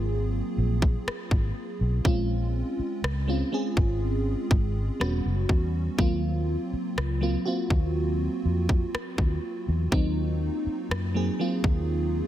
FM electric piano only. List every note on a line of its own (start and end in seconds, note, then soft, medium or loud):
0.00 2.07 F#3 medium
0.00 2.07 A#3 medium
0.00 2.05 C4 medium
0.00 2.07 F4 medium
0.00 2.07 G#4 medium
2.04 3.13 G#3 medium
2.04 3.13 C4 medium
2.04 3.14 C#4 medium
2.04 3.14 F4 medium
3.28 3.49 G#3 medium
3.28 3.50 C4 medium
3.28 3.50 C#4 medium
3.28 3.51 F4 medium
3.52 5.00 G#3 medium
3.52 5.00 C4 medium
3.52 5.00 C#4 medium
3.52 5.01 G#4 medium
5.00 5.87 G3 medium
5.00 5.87 B3 medium
5.00 5.87 C#4 medium
5.00 5.88 F#4 medium
5.98 7.06 F#3 medium
5.98 7.07 A#3 medium
5.98 7.07 C4 medium
5.98 7.08 F4 medium
7.21 7.43 F#3 medium
7.21 7.43 A#3 medium
7.21 7.44 C4 medium
7.21 7.44 F4 medium
7.45 9.19 A#3 medium
7.45 9.20 C4 medium
7.45 9.20 F4 medium
7.45 9.19 F#4 medium
9.91 11.00 F#3 medium
9.91 11.00 A#3 medium
9.91 11.01 C4 medium
9.91 11.01 D#4 loud
11.14 11.36 F#3 medium
11.14 11.37 A#3 medium
11.14 11.37 C4 medium
11.14 11.37 G#4 medium
11.39 12.27 F#3 medium
11.39 12.27 A#3 medium
11.39 12.27 C4 medium
11.39 12.27 F4 medium